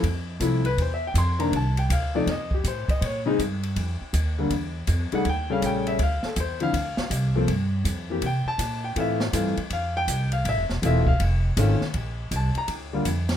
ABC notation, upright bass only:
X:1
M:4/4
L:1/8
Q:"Swing" 1/4=161
K:F
V:1 name="Upright bass" clef=bass
F,,2 C,,2 E,,2 F,,2 | C,,2 D,,2 F,,2 A,, z | B,,2 G,,2 F,, z _E,,2 | E,,2 F,, z _E,,2 B,,,2 |
D,, z E,,2 D,, z C,,2 | G,,2 F,,2 C, z B,,2 | A,,2 G,, z F,,2 C,,2 | (3A,,, F,,, E,,, E,,,2 F,,,2 ^G,,, z |
B,,,2 C,, z D,,2 F,,2 |]